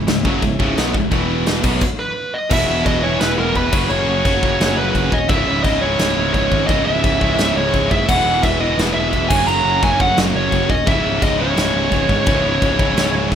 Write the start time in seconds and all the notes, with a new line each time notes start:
Already playing: G#3 C#4 E4 C#5 E5
0.07 C#1 C#2 G#2, snare, china
0.24 F#1 F#2 C#3 F#3, kick
0.42 C#1 C#2 G#2, kick, china
0.59 C#1 C#2 G#2 C#3, kick
0.77 B1 B2 F#3 B3, snare, china
0.94 C#1 C#2 G#2, kick
1.11 E1 E2 B2 E3 B3 E4 B4 B5, kick, china
1.46 snare, china
1.64 B1 B2 F#3 G#3 B3 C#4 C#5 E5, kick, crash
1.81 kick, crash
1.99 B4
2.34 D#5
2.50 E1 E2 B2 E3 G#3 B3 E4 B4 E5, kick, crash, china
2.58 E2 B2
2.66 E1 E2 B2
2.73 E2 B2
2.81 E2 B2
2.85 E1 E2 B2 D#5, kick, china
2.96 E2 B2
3.02 E2 B2 E3 G#3 B3 E4 C#5
3.11 E2 B2
3.19 E1 E2 B2 B4, snare, china
3.27 E2 B2
3.34 E1 E2 B2
3.39 E2 B2 A#4
3.50 E2 B2
3.55 E1 E2 B2 B4, kick, china
3.65 E2 B2
3.71 F#1 F#2 A#2 C#3 F#3 A#3 C#4 F#4 C#5 F#5, kick, crash
3.78 F#2 C#3
3.87 F#1 F#2 C#3 C#5, china
3.96 F#2 C#3
4.03 F#2 C#3
4.08 F#1 F#2 C#3
4.18 F#2 C#3
4.24 F#1 F#2 C#3 F#3 A#3 C#4 F#4, kick, china
4.33 F#2 C#3
4.42 F#2 C#3, kick
4.49 F#2 C#3
4.58 F#1 F#2 C#3, snare, china
4.65 F#2 C#3
4.73 F#1 F#2 C#3
4.77 F#2 C#3 B4
4.89 F#2 C#3
4.94 F#1 F#2 C#3, kick, china
5.04 F#2 C#3
5.12 D#1 D#5, kick
5.28 C#1 C#2 G#2 C#3 G#3 E4 E5, kick, china
5.37 C#2 G#2
5.45 C#1 C#2 G#2
5.52 C#2 G#2
5.59 C#2 G#2
5.63 C#1 D#5, kick, china
5.67 C#2 G#2
5.76 C#2 G#2
5.81 C#2 G#2 C#3 G#3 E4 C#5
5.90 C#2 G#2
5.98 C#1 C#2 G#2, snare, china
6.05 C#2 G#2
6.15 C#1 C#2 G#2
6.22 C#2 G#2
6.29 C#2 G#2
6.34 C#1 C#2 G#2 C#5, kick, china
6.45 C#2 G#2
6.51 G#1 C#2 G#2, kick
6.60 C#2 G#2
6.67 C#1 C#2 G#2 C#3 G#3 E4 D#5, kick, china
6.76 C#2 G#2
6.84 C#1 C#2 G#2 E5
6.91 C#2 G#2
6.99 C#2 G#2
7.04 C#1 C#2 G#2, kick, china
7.15 C#2 G#2
7.20 C#2 G#2 C#3 G#3 E4, kick
7.30 C#2 G#2
7.38 C#1 C#2 G#2, snare, china
7.45 C#2 G#2
7.54 C#1 C#2 G#2 C#5
7.61 C#2 G#2
7.70 C#2 G#2
7.74 C#1 C#2 G#2, kick, china
7.85 C#2 G#2
7.91 F#1 C#2 G#2 E5, kick
8.00 C#2 G#2
8.08 E1 E2 B2 E3 G#3 B3 E4 B4 F#5, kick, china, crash
8.15 E2 B2
8.23 E1 E2 B2
8.30 E2 B2
8.38 E2 B2
8.43 E1 E2 E5, kick, china
8.48 B2
8.54 E2 B2
8.60 E2 B2 E3 G#3 B3 E4 D#5
8.69 E2 B2
8.76 E1 E2 B2, snare, china
8.83 E2 B2
8.91 E1 E2 B2 E5
8.99 E2 B2
9.07 E2 B2
9.13 E1 E2 B2, kick, china
9.22 E2 B2
9.29 F#1 F#2 C#3 F#3 A#3 C#4 F#4 A#4 C#5 G#5, kick, crash
9.36 F#2 C#3
9.44 F#1 F#2 C#3 A#5
9.48 china
9.53 F#2 C#3
9.61 F#1 F#2 C#3
9.68 F#2 C#3
9.76 F#2 C#3
9.81 F#1 F#2 C#3 F#3 A#3 C#4 F#4 G#5, kick, china
9.91 F#2 C#3
9.99 F#2 C#3 F#5, kick
10.08 F#2 C#3
10.14 F#1 F#2 C#3, snare, china
10.22 F#2 C#3
10.30 F#1 F#2 C#3
10.36 F#2 C#3 C#5
10.46 F#2 C#3
10.52 F#1 F#2 C#3, kick, china
10.62 F#2 C#3
10.69 D#1 D#5, kick
10.86 C#1 C#2 G#2 C#3 E3 G#3 C#4 E4 G#4 E5, kick, china
10.95 C#2 G#2
11.02 C#1 C#2 G#2
11.09 C#2 G#2
11.18 C#2 G#2
11.22 C#1 C#2 D#5, kick, china
11.26 G#2
11.33 C#2 G#2
11.38 C#2 G#2 C#3 G#3 E4 C#5
11.48 C#2 G#2
11.56 C#1 C#2 G#2, snare, china
11.63 C#2 G#2
11.70 C#1 C#2 G#2
11.80 C#2 G#2
11.86 C#2 G#2
11.91 C#1 G#2, kick, china
11.96 C#2
12.02 C#2 G#2
12.09 G#1 C#2 G#2, kick
12.18 C#2 G#2
12.25 C#1 C#2 G#2 C#3 G#3 E4, kick, china
12.35 C#2 G#2
12.42 C#1 C#2 G#2
12.49 C#2 G#2
12.57 C#2 G#2
12.62 C#1 C#2 G#2, kick, china
12.72 C#2 G#2
12.78 C#2 G#2 C#3 G#3 E4, kick
12.88 C#2 G#2
12.95 C#1 C#2 G#2, snare, china
13.04 C#2 G#2
13.12 C#1 C#2 G#2
13.18 C#2 G#2
13.27 C#2 G#2
13.32 C#1, kick